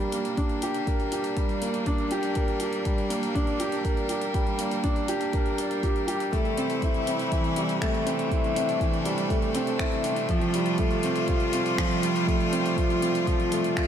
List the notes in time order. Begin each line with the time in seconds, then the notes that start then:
Already playing: G3 A#3 D4 G4 A#4
0.00 closed hi-hat
0.12 F1 A#3, closed hi-hat
0.25 closed hi-hat
0.37 D4, kick, closed hi-hat
0.49 closed hi-hat
0.62 G1 G4, closed hi-hat
0.74 closed hi-hat
0.87 A#4, kick, closed hi-hat
1.00 closed hi-hat
1.11 G1 G4, closed hi-hat
1.24 closed hi-hat
1.37 G3, kick, closed hi-hat
1.49 closed hi-hat
1.62 G1 A#3, closed hi-hat
1.74 closed hi-hat
1.86 D4, kick, closed hi-hat
1.98 closed hi-hat
2.11 F1 G4, closed hi-hat
2.23 closed hi-hat
2.35 A#4, kick, closed hi-hat
2.48 closed hi-hat
2.60 G1 G4, closed hi-hat
2.73 closed hi-hat
2.85 G3, kick, closed hi-hat
2.98 closed hi-hat
3.10 G1 A#3, closed hi-hat
3.23 closed hi-hat
3.35 D4, kick, closed hi-hat
3.47 closed hi-hat
3.60 G1 G4, closed hi-hat
3.72 closed hi-hat
3.85 A#4, kick, closed hi-hat
3.97 closed hi-hat
4.09 F1 G4, closed hi-hat
4.22 closed hi-hat
4.34 G3, kick, closed hi-hat
4.47 closed hi-hat
4.58 G1 A#3, closed hi-hat
4.71 closed hi-hat
4.84 D4, kick, closed hi-hat
4.96 closed hi-hat
5.08 G1 G4, closed hi-hat
5.21 closed hi-hat
5.33 A#4, kick, closed hi-hat
5.46 closed hi-hat
5.58 G1 D5, closed hi-hat
5.71 closed hi-hat
5.83 G4, kick, closed hi-hat
5.96 closed hi-hat
6.07 G1 G4, closed hi-hat
6.20 closed hi-hat
6.32 C3 E3 A3 E4, kick, closed hi-hat
6.45 closed hi-hat
6.57 A1 C4, closed hi-hat
6.70 closed hi-hat
6.82 E4, kick, closed hi-hat
6.94 closed hi-hat
7.07 A1 C4, closed hi-hat
7.19 closed hi-hat
7.32 E3, kick, closed hi-hat
7.44 closed hi-hat
7.56 A1 G3, closed hi-hat
7.69 closed hi-hat
7.81 A3, finger snap, kick, closed hi-hat
7.94 closed hi-hat
8.06 G1 C4, closed hi-hat
8.19 closed hi-hat
8.31 D4 E4, kick, closed hi-hat
8.44 closed hi-hat
8.55 A1 C4, closed hi-hat
8.69 closed hi-hat
8.80 E3, kick, closed hi-hat
8.94 closed hi-hat
9.05 A1 G3, closed hi-hat
9.18 closed hi-hat
9.30 A3, kick, closed hi-hat
9.42 closed hi-hat
9.55 A1 C4, closed hi-hat
9.67 closed hi-hat
9.79 E4, finger snap, kick, closed hi-hat
9.92 closed hi-hat
10.04 G1 C4, closed hi-hat
10.16 closed hi-hat
10.29 F3 G3 F4, kick, closed hi-hat
10.41 closed hi-hat
10.54 F1 G3, closed hi-hat
10.66 closed hi-hat
10.78 A3, kick, closed hi-hat
10.91 closed hi-hat
11.03 C4, closed hi-hat
11.16 closed hi-hat
11.28 F4, kick, closed hi-hat
11.40 closed hi-hat
11.53 C4, closed hi-hat
11.66 closed hi-hat
11.78 F3, finger snap, kick, closed hi-hat
11.91 closed hi-hat
12.03 C2 G3, closed hi-hat
12.16 closed hi-hat
12.27 A3, kick, closed hi-hat
12.40 closed hi-hat
12.52 F1 C4, closed hi-hat
12.66 closed hi-hat
12.77 F4, kick, closed hi-hat
12.90 closed hi-hat
13.02 C4, closed hi-hat
13.15 closed hi-hat
13.27 F3, kick, closed hi-hat
13.40 closed hi-hat
13.52 C2 A3, closed hi-hat
13.64 closed hi-hat
13.77 F4, finger snap, kick, closed hi-hat